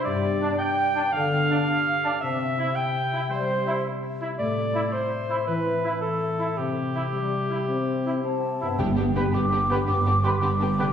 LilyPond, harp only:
\new Staff \with { instrumentName = "Harp" } { \time 12/8 \key g \mixolydian \tempo 4. = 110 <g, g d' g' d''>8 b8 g'8 b'8 d''8 b'8 d8 b8 g'8 b'8 d''8 b'8 | c8 c'8 g'4 e''4 g8 c'8 g'4 e''4 | a,8 c'8 a'4 e''4 e8 c'8 a'8 c''8 e''8 c''8 | c8 c'8 g'8 c''8 e''8 c''8 g8 c'8 g'8 c''8 e''8 c''8 |
<g, b d' g'>1. | }